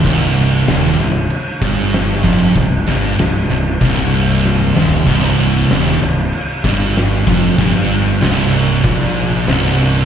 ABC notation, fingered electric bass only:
X:1
M:4/4
L:1/8
Q:1/4=96
K:Cm
V:1 name="Fingered electric bass" clef=bass
C,,,2 E,,, C,,, z G,,,2 F,,, | C,,, G,,, C,,, C,,, C,,,3 E,,, | C,,,2 E,,, C,,, z G,,,2 F,,, | G,,,2 C,,,2 B,,,2 C,,,2 |]